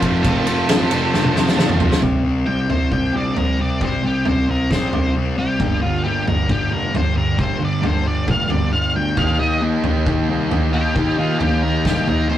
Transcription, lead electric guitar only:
0, 0, Header, 1, 2, 480
1, 0, Start_track
1, 0, Tempo, 446429
1, 264, Time_signature, 4, 2, 24, 8
1, 13310, End_track
2, 0, Start_track
2, 0, Title_t, "Lead electric guitar"
2, 0, Program_c, 0, 29
2, 247, Note_on_c, 0, 69, 121
2, 1885, Note_off_c, 0, 69, 0
2, 2651, Note_on_c, 0, 79, 104
2, 2886, Note_off_c, 0, 79, 0
2, 2908, Note_on_c, 0, 72, 85
2, 3134, Note_off_c, 0, 72, 0
2, 3147, Note_on_c, 0, 79, 88
2, 3374, Note_off_c, 0, 79, 0
2, 3408, Note_on_c, 0, 74, 86
2, 3625, Note_off_c, 0, 74, 0
2, 3638, Note_on_c, 0, 70, 78
2, 3860, Note_off_c, 0, 70, 0
2, 3887, Note_on_c, 0, 74, 78
2, 4105, Note_off_c, 0, 74, 0
2, 4138, Note_on_c, 0, 72, 79
2, 4350, Note_off_c, 0, 72, 0
2, 4367, Note_on_c, 0, 67, 80
2, 4585, Note_off_c, 0, 67, 0
2, 4599, Note_on_c, 0, 72, 74
2, 4821, Note_off_c, 0, 72, 0
2, 4846, Note_on_c, 0, 70, 82
2, 5065, Note_off_c, 0, 70, 0
2, 5071, Note_on_c, 0, 72, 93
2, 5530, Note_off_c, 0, 72, 0
2, 5794, Note_on_c, 0, 67, 106
2, 6252, Note_off_c, 0, 67, 0
2, 6257, Note_on_c, 0, 65, 79
2, 6488, Note_off_c, 0, 65, 0
2, 6492, Note_on_c, 0, 67, 85
2, 6729, Note_off_c, 0, 67, 0
2, 6749, Note_on_c, 0, 70, 94
2, 6978, Note_off_c, 0, 70, 0
2, 6995, Note_on_c, 0, 67, 106
2, 7221, Note_off_c, 0, 67, 0
2, 7230, Note_on_c, 0, 70, 92
2, 7458, Note_off_c, 0, 70, 0
2, 7490, Note_on_c, 0, 72, 80
2, 7709, Note_off_c, 0, 72, 0
2, 7713, Note_on_c, 0, 70, 87
2, 7940, Note_off_c, 0, 70, 0
2, 7959, Note_on_c, 0, 72, 94
2, 8183, Note_off_c, 0, 72, 0
2, 8223, Note_on_c, 0, 74, 83
2, 8436, Note_off_c, 0, 74, 0
2, 8452, Note_on_c, 0, 72, 83
2, 8671, Note_off_c, 0, 72, 0
2, 8683, Note_on_c, 0, 74, 90
2, 8906, Note_off_c, 0, 74, 0
2, 8930, Note_on_c, 0, 77, 86
2, 9146, Note_off_c, 0, 77, 0
2, 9150, Note_on_c, 0, 74, 85
2, 9378, Note_off_c, 0, 74, 0
2, 9383, Note_on_c, 0, 77, 81
2, 9616, Note_off_c, 0, 77, 0
2, 9635, Note_on_c, 0, 79, 91
2, 9862, Note_off_c, 0, 79, 0
2, 9864, Note_on_c, 0, 77, 99
2, 10096, Note_off_c, 0, 77, 0
2, 10100, Note_on_c, 0, 75, 102
2, 10335, Note_off_c, 0, 75, 0
2, 11540, Note_on_c, 0, 67, 111
2, 12008, Note_off_c, 0, 67, 0
2, 12030, Note_on_c, 0, 65, 79
2, 12244, Note_off_c, 0, 65, 0
2, 12248, Note_on_c, 0, 67, 89
2, 12489, Note_off_c, 0, 67, 0
2, 12497, Note_on_c, 0, 70, 94
2, 12734, Note_off_c, 0, 70, 0
2, 12754, Note_on_c, 0, 67, 103
2, 12982, Note_off_c, 0, 67, 0
2, 12986, Note_on_c, 0, 70, 93
2, 13215, Note_off_c, 0, 70, 0
2, 13219, Note_on_c, 0, 72, 82
2, 13310, Note_off_c, 0, 72, 0
2, 13310, End_track
0, 0, End_of_file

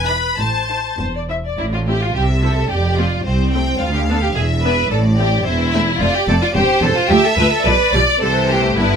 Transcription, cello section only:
0, 0, Header, 1, 2, 480
1, 0, Start_track
1, 0, Key_signature, 0, "minor"
1, 0, Tempo, 601202
1, 311, Time_signature, 2, 2, 24, 8
1, 1268, Tempo, 552995
1, 7669, End_track
2, 0, Start_track
2, 0, Title_t, "Cello section"
2, 0, Program_c, 0, 48
2, 0, Note_on_c, 0, 40, 56
2, 207, Note_off_c, 0, 40, 0
2, 310, Note_on_c, 0, 45, 51
2, 694, Note_off_c, 0, 45, 0
2, 794, Note_on_c, 0, 40, 43
2, 1170, Note_off_c, 0, 40, 0
2, 1266, Note_on_c, 0, 45, 50
2, 1672, Note_off_c, 0, 45, 0
2, 1750, Note_on_c, 0, 48, 44
2, 2151, Note_off_c, 0, 48, 0
2, 2235, Note_on_c, 0, 41, 52
2, 2636, Note_off_c, 0, 41, 0
2, 2717, Note_on_c, 0, 36, 50
2, 3115, Note_off_c, 0, 36, 0
2, 3193, Note_on_c, 0, 38, 54
2, 3591, Note_off_c, 0, 38, 0
2, 3674, Note_on_c, 0, 40, 54
2, 4070, Note_off_c, 0, 40, 0
2, 4149, Note_on_c, 0, 45, 59
2, 4544, Note_off_c, 0, 45, 0
2, 4621, Note_on_c, 0, 40, 60
2, 5017, Note_off_c, 0, 40, 0
2, 5093, Note_on_c, 0, 41, 64
2, 5163, Note_off_c, 0, 41, 0
2, 5335, Note_on_c, 0, 41, 57
2, 5405, Note_off_c, 0, 41, 0
2, 5569, Note_on_c, 0, 40, 56
2, 5639, Note_off_c, 0, 40, 0
2, 5807, Note_on_c, 0, 40, 54
2, 5876, Note_off_c, 0, 40, 0
2, 6045, Note_on_c, 0, 38, 66
2, 6114, Note_off_c, 0, 38, 0
2, 6284, Note_on_c, 0, 38, 57
2, 6354, Note_off_c, 0, 38, 0
2, 6530, Note_on_c, 0, 47, 57
2, 6599, Note_off_c, 0, 47, 0
2, 6770, Note_on_c, 0, 47, 58
2, 6840, Note_off_c, 0, 47, 0
2, 7011, Note_on_c, 0, 48, 60
2, 7465, Note_off_c, 0, 48, 0
2, 7502, Note_on_c, 0, 43, 53
2, 7669, Note_off_c, 0, 43, 0
2, 7669, End_track
0, 0, End_of_file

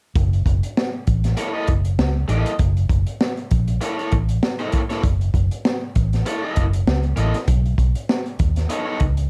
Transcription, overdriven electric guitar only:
0, 0, Header, 1, 2, 480
1, 0, Start_track
1, 0, Tempo, 610376
1, 119, Time_signature, 4, 2, 24, 8
1, 7313, End_track
2, 0, Start_track
2, 0, Title_t, "Overdriven electric guitar"
2, 0, Program_c, 0, 29
2, 1078, Note_on_c, 0, 58, 57
2, 1086, Note_on_c, 0, 64, 62
2, 1088, Note_on_c, 0, 69, 58
2, 1093, Note_on_c, 0, 73, 60
2, 1181, Note_off_c, 0, 58, 0
2, 1185, Note_off_c, 0, 64, 0
2, 1186, Note_off_c, 0, 69, 0
2, 1188, Note_off_c, 0, 73, 0
2, 1208, Note_on_c, 0, 75, 78
2, 1214, Note_on_c, 0, 69, 74
2, 1220, Note_on_c, 0, 64, 65
2, 1224, Note_on_c, 0, 58, 58
2, 1313, Note_off_c, 0, 75, 0
2, 1316, Note_off_c, 0, 69, 0
2, 1319, Note_off_c, 0, 64, 0
2, 1321, Note_off_c, 0, 58, 0
2, 1794, Note_on_c, 0, 58, 74
2, 1800, Note_on_c, 0, 64, 73
2, 1802, Note_on_c, 0, 69, 78
2, 1810, Note_on_c, 0, 75, 81
2, 1964, Note_off_c, 0, 58, 0
2, 1967, Note_off_c, 0, 64, 0
2, 1968, Note_off_c, 0, 69, 0
2, 1972, Note_off_c, 0, 75, 0
2, 2997, Note_on_c, 0, 58, 64
2, 3000, Note_on_c, 0, 64, 58
2, 3006, Note_on_c, 0, 69, 67
2, 3008, Note_on_c, 0, 73, 63
2, 3100, Note_off_c, 0, 58, 0
2, 3102, Note_off_c, 0, 64, 0
2, 3105, Note_off_c, 0, 69, 0
2, 3106, Note_off_c, 0, 73, 0
2, 3128, Note_on_c, 0, 73, 90
2, 3133, Note_on_c, 0, 69, 85
2, 3138, Note_on_c, 0, 64, 76
2, 3141, Note_on_c, 0, 58, 56
2, 3233, Note_off_c, 0, 73, 0
2, 3236, Note_off_c, 0, 69, 0
2, 3238, Note_off_c, 0, 64, 0
2, 3240, Note_off_c, 0, 58, 0
2, 3612, Note_on_c, 0, 73, 66
2, 3617, Note_on_c, 0, 69, 67
2, 3619, Note_on_c, 0, 64, 75
2, 3624, Note_on_c, 0, 58, 58
2, 3761, Note_off_c, 0, 73, 0
2, 3764, Note_off_c, 0, 69, 0
2, 3765, Note_off_c, 0, 64, 0
2, 3767, Note_off_c, 0, 58, 0
2, 3851, Note_on_c, 0, 73, 49
2, 3855, Note_on_c, 0, 69, 54
2, 3859, Note_on_c, 0, 64, 50
2, 3864, Note_on_c, 0, 58, 46
2, 3933, Note_off_c, 0, 73, 0
2, 3935, Note_off_c, 0, 69, 0
2, 3937, Note_off_c, 0, 64, 0
2, 3939, Note_off_c, 0, 58, 0
2, 4922, Note_on_c, 0, 58, 59
2, 4926, Note_on_c, 0, 64, 56
2, 4929, Note_on_c, 0, 69, 66
2, 4933, Note_on_c, 0, 73, 65
2, 5023, Note_off_c, 0, 58, 0
2, 5025, Note_off_c, 0, 64, 0
2, 5026, Note_off_c, 0, 69, 0
2, 5028, Note_off_c, 0, 73, 0
2, 5052, Note_on_c, 0, 75, 86
2, 5059, Note_on_c, 0, 69, 80
2, 5063, Note_on_c, 0, 64, 75
2, 5067, Note_on_c, 0, 58, 59
2, 5202, Note_off_c, 0, 75, 0
2, 5205, Note_off_c, 0, 69, 0
2, 5207, Note_off_c, 0, 64, 0
2, 5209, Note_off_c, 0, 58, 0
2, 5632, Note_on_c, 0, 58, 76
2, 5638, Note_on_c, 0, 64, 70
2, 5644, Note_on_c, 0, 69, 79
2, 5647, Note_on_c, 0, 75, 72
2, 5767, Note_off_c, 0, 58, 0
2, 5770, Note_off_c, 0, 64, 0
2, 5773, Note_off_c, 0, 69, 0
2, 5774, Note_off_c, 0, 75, 0
2, 6837, Note_on_c, 0, 59, 55
2, 6845, Note_on_c, 0, 63, 60
2, 6847, Note_on_c, 0, 69, 62
2, 6853, Note_on_c, 0, 73, 59
2, 6940, Note_off_c, 0, 59, 0
2, 6944, Note_off_c, 0, 63, 0
2, 6945, Note_off_c, 0, 69, 0
2, 6948, Note_off_c, 0, 73, 0
2, 6965, Note_on_c, 0, 73, 82
2, 6971, Note_on_c, 0, 69, 80
2, 6975, Note_on_c, 0, 63, 70
2, 6978, Note_on_c, 0, 59, 62
2, 7071, Note_off_c, 0, 73, 0
2, 7074, Note_off_c, 0, 69, 0
2, 7077, Note_off_c, 0, 63, 0
2, 7078, Note_off_c, 0, 59, 0
2, 7313, End_track
0, 0, End_of_file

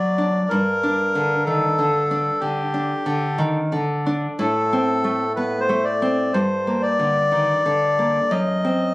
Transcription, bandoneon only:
0, 0, Header, 1, 2, 480
1, 0, Start_track
1, 0, Key_signature, -2, "minor"
1, 0, Tempo, 966184
1, 245, Time_signature, 4, 2, 24, 8
1, 1680, Tempo, 988468
1, 4381, End_track
2, 0, Start_track
2, 0, Title_t, "Bandoneon"
2, 0, Program_c, 0, 23
2, 0, Note_on_c, 0, 74, 74
2, 244, Note_on_c, 0, 70, 85
2, 245, Note_off_c, 0, 74, 0
2, 714, Note_off_c, 0, 70, 0
2, 725, Note_on_c, 0, 69, 71
2, 1193, Note_on_c, 0, 67, 68
2, 1195, Note_off_c, 0, 69, 0
2, 1679, Note_off_c, 0, 67, 0
2, 2172, Note_on_c, 0, 69, 84
2, 2624, Note_off_c, 0, 69, 0
2, 2641, Note_on_c, 0, 71, 70
2, 2757, Note_off_c, 0, 71, 0
2, 2758, Note_on_c, 0, 72, 79
2, 2875, Note_on_c, 0, 74, 73
2, 2878, Note_off_c, 0, 72, 0
2, 3113, Note_on_c, 0, 72, 71
2, 3114, Note_off_c, 0, 74, 0
2, 3350, Note_on_c, 0, 74, 94
2, 3351, Note_off_c, 0, 72, 0
2, 4072, Note_on_c, 0, 75, 91
2, 4075, Note_off_c, 0, 74, 0
2, 4381, Note_off_c, 0, 75, 0
2, 4381, End_track
0, 0, End_of_file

